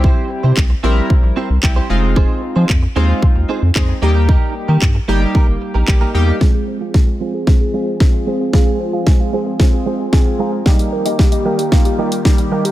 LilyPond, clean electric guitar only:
\new Staff \with { instrumentName = "Clean electric guitar" } { \time 4/4 \key f \minor \tempo 4 = 113 <c' e' g' c''>8 r16 <c' e' g' c''>16 r8 <c' e' g' c''>16 <c' e' g' c''>16 r8 <c' e' g' c''>8 r16 <c' e' g' c''>8 r16 | <c' ees' aes' c''>8 r16 <c' ees' aes' c''>16 r8 <c' ees' aes' c''>16 <c' ees' aes' c''>16 r8 <c' ees' aes' c''>8 r8 <bes ees' g' bes'>16 <bes ees' g' bes'>16 | <bes ees' g' bes'>8 r16 <bes ees' g' bes'>16 r8 <bes ees' g' bes'>16 <bes ees' g' bes'>16 <bes ees' g' bes'>8 r16 <bes ees' g' bes'>16 r16 <bes ees' g' bes'>8 r16 | <aes c' f' aes'>8 r16 <aes c' f' aes'>16 r8 <aes c' f' aes'>16 <aes c'>16 r8 <aes c' f' aes'>8 r8 <aes c' f' aes'>16 <aes c' f' aes'>16 |
<aes c' f' aes'>8 r16 <aes c' f' aes'>16 r8 <aes c' f' aes'>16 <aes c' f' aes'>16 r8 <aes c' f' aes'>8 r8 <aes c' f' aes'>8 | <g bes ees' g'>8 r16 <g bes ees' g'>16 r8 <g bes ees' g'>16 <g bes ees' g'>16 r8 <g bes ees' g'>8 r8 <g bes ees' g'>16 <bes ees' g'>16 | }